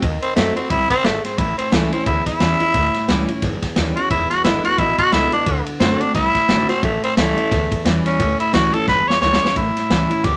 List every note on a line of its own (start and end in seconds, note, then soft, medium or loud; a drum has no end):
0.02 0.20 D#2 medium
0.02 0.35 D#3 medium
0.02 kick loud
0.02 ride medium
0.22 0.35 C4 loud
0.22 ride medium
0.36 0.55 F#2 loud
0.36 0.56 D#3 loud
0.36 0.56 A3 loud
0.36 0.56 A3 medium
0.36 0.56 C4 loud
0.36 0.55 F#4 medium
0.36 snare loud
0.36 ride medium
0.56 0.72 C4 loud
0.56 0.71 C4 medium
0.56 0.70 F#4 medium
0.56 muted upright bass stroke medium
0.56 ride medium
0.70 0.88 C2 medium
0.70 1.03 C3 medium
0.70 0.90 E4 loud
0.70 kick loud
0.70 ride medium
0.90 1.06 C4 loud
0.90 kick medium
0.90 snare soft
0.90 ride medium
1.04 1.22 G#1 medium
1.04 1.37 G#2 loud
1.04 1.24 A3 loud
1.04 snare loud
1.04 ride medium
1.24 1.40 C4 medium
1.24 muted upright bass stroke medium
1.24 snare soft
1.24 ride medium
1.38 1.56 A1 loud
1.38 2.04 A2 medium
1.38 1.57 E4 medium
1.38 kick loud
1.38 ride loud
1.58 1.75 C4 loud
1.58 ride medium
1.72 1.90 C#2 loud
1.72 1.91 E3 loud
1.72 1.92 G3 loud
1.72 1.92 A3 medium
1.72 1.92 C#4 loud
1.72 1.91 E4 loud
1.72 snare loud
1.72 ride medium
1.92 2.06 C4 medium
1.92 2.07 C#4 medium
1.92 2.06 E4 medium
1.92 ride medium
2.06 2.24 D2 loud
2.06 2.72 E2 loud
2.06 2.26 E4 medium
2.06 kick loud
2.06 ride medium
2.26 3.26 E4 loud
2.26 kick medium
2.26 snare soft
2.26 ride medium
2.40 2.59 E2 medium
2.40 2.60 E3 medium
2.40 2.60 G3 medium
2.40 2.60 C#4 loud
2.40 2.59 E4 medium
2.40 snare loud
2.40 ride medium
2.60 2.75 C#4 medium
2.60 2.74 E4 medium
2.60 muted upright bass stroke medium
2.60 ride medium
2.74 2.92 D2 loud
2.74 3.40 A2 medium
2.74 kick loud
2.74 ride medium
2.94 snare soft
2.94 ride medium
3.08 3.27 C#2 medium
3.08 3.28 E3 medium
3.08 3.28 G3 loud
3.08 3.28 C#4 loud
3.08 3.28 E4 loud
3.08 snare loud
3.08 ride medium
3.28 3.43 C#4 medium
3.28 3.42 E4 medium
3.28 ride medium
3.42 3.60 G1 loud
3.42 4.08 E2 medium
3.42 kick loud
3.42 snare soft
3.42 ride medium
3.62 kick medium
3.62 snare soft
3.62 ride medium
3.76 3.95 D#2 medium
3.76 3.96 E3 medium
3.76 3.96 G3 medium
3.76 3.97 C#4 medium
3.76 3.95 E4 medium
3.76 snare medium
3.76 ride medium
3.96 4.11 C#4 medium
3.96 4.10 E4 medium
3.96 4.10 F#4 loud
3.96 ride medium
4.10 4.29 E1 loud
4.10 4.76 E2 medium
4.10 4.30 E4 medium
4.10 kick loud
4.10 ride medium
4.30 4.43 F#4 loud
4.30 snare soft
4.30 ride medium
4.44 4.63 G#1 loud
4.44 4.64 D3 medium
4.44 4.64 G#3 medium
4.44 4.64 B3 loud
4.44 4.64 E4 medium
4.44 4.62 E4 loud
4.44 snare loud
4.44 ride medium
4.64 4.79 B3 medium
4.64 4.78 E4 medium
4.64 4.80 F#4 loud
4.64 muted upright bass stroke medium
4.64 ride medium
4.78 4.97 A1 loud
4.78 5.44 B2 medium
4.78 4.98 E4 loud
4.78 kick loud
4.78 ride medium
4.98 5.14 F#4 loud
4.98 kick medium
4.98 ride medium
5.12 5.31 C#2 loud
5.12 5.32 D3 medium
5.12 5.32 G#3 medium
5.12 5.32 B3 loud
5.12 5.32 E4 loud
5.12 5.31 E4 loud
5.12 snare medium
5.12 ride medium
5.32 5.47 B3 soft
5.32 5.66 D4 medium
5.32 5.46 E4 medium
5.32 muted upright bass stroke medium
5.32 ride medium
5.46 5.65 D2 loud
5.46 5.79 D3 medium
5.46 kick loud
5.46 ride medium
5.66 ride medium
5.80 5.99 F#2 medium
5.80 6.00 D3 loud
5.80 6.00 A3 medium
5.80 6.02 C4 loud
5.80 6.01 C4 loud
5.80 5.99 F#4 loud
5.80 snare loud
5.80 ride medium
6.00 6.15 C4 medium
6.00 6.14 D4 loud
6.00 6.14 F#4 medium
6.00 muted upright bass stroke medium
6.00 ride medium
6.14 6.33 C2 loud
6.14 6.81 A2 medium
6.14 6.68 E4 loud
6.14 kick loud
6.14 snare soft
6.14 ride medium
6.35 kick medium
6.35 snare soft
6.35 ride medium
6.48 6.67 G#1 loud
6.48 6.68 D3 medium
6.48 6.69 A3 loud
6.48 6.69 C4 loud
6.48 6.67 F#4 loud
6.48 snare loud
6.48 ride medium
6.69 6.83 C4 loud
6.69 6.83 C4 medium
6.69 6.82 F#4 medium
6.69 snare soft
6.69 ride medium
6.83 7.01 A1 loud
6.83 7.49 A2 medium
6.83 7.03 A3 loud
6.83 kick loud
6.83 ride medium
7.03 7.17 C4 loud
7.03 ride medium
7.17 7.36 C#2 medium
7.17 7.37 E3 medium
7.17 7.37 G3 loud
7.17 7.84 A3 loud
7.17 7.38 C#4 medium
7.17 7.36 E4 loud
7.17 snare loud
7.17 ride medium
7.37 7.52 C#4 medium
7.37 7.51 E4 medium
7.37 ride medium
7.51 7.69 D2 loud
7.51 8.17 E2 loud
7.51 kick loud
7.51 snare soft
7.51 ride medium
7.72 kick loud
7.72 ride medium
7.85 8.03 E2 loud
7.85 8.18 E3 medium
7.85 8.19 G3 medium
7.85 8.19 C#4 loud
7.85 8.19 E4 loud
7.85 snare medium
7.85 ride medium
8.06 8.39 C#4 loud
8.06 snare soft
8.06 ride medium
8.20 8.38 D2 loud
8.20 8.85 A2 medium
8.20 kick loud
8.20 ride loud
8.40 8.53 E4 medium
8.40 ride medium
8.53 8.72 C#2 loud
8.53 8.73 E3 loud
8.53 8.73 G3 loud
8.53 8.74 C#4 loud
8.53 8.72 E4 loud
8.53 8.75 F#4 loud
8.53 snare loud
8.53 ride medium
8.73 8.88 C#4 medium
8.73 8.87 E4 medium
8.73 8.87 A4 loud
8.73 ride medium
8.88 9.06 G1 loud
8.88 9.53 E2 medium
8.88 9.09 B4 loud
8.88 kick loud
8.88 snare medium
9.08 9.21 C#5 loud
9.08 muted upright bass stroke medium
9.08 snare medium
9.21 9.40 C#2 loud
9.21 9.41 E3 medium
9.21 9.41 G3 medium
9.21 9.42 C#4 loud
9.21 9.41 E4 medium
9.21 9.55 C#5 loud
9.21 snare medium
9.33 snare loud
9.42 9.56 C#4 medium
9.42 9.55 E4 medium
9.42 snare medium
9.56 9.74 A1 loud
9.56 10.21 A2 medium
9.56 10.26 E4 medium
9.56 kick loud
9.56 ride medium
9.77 snare soft
9.77 ride medium
9.90 10.08 C#2 medium
9.90 10.10 E3 medium
9.90 10.10 G3 loud
9.90 10.10 C#4 loud
9.90 10.09 E4 loud
9.90 snare loud
9.90 ride medium
10.10 10.25 C#4 soft
10.10 10.23 E4 medium
10.10 ride medium
10.24 10.37 D2 loud
10.24 10.37 E2 medium
10.24 10.37 G4 loud
10.24 kick loud
10.24 snare soft
10.24 ride medium